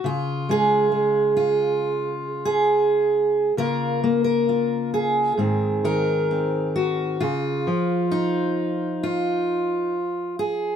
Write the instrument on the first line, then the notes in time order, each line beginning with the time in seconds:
steel-string acoustic guitar
0.04 C#3 F4
0.49 G#3 G#4
0.92 G#3
1.37 F4
2.45 G#4
3.57 C#3 A#3 F4 A#4
4.04 A#3
4.24 A#4
4.49 F4
4.94 G#4
5.37 G#2 D#3 C4
5.84 D#3 A#4
6.31 C4
6.76 F#4
7.20 C#3 F4
7.67 F3
8.11 D#4
9.03 F4
10.39 G#4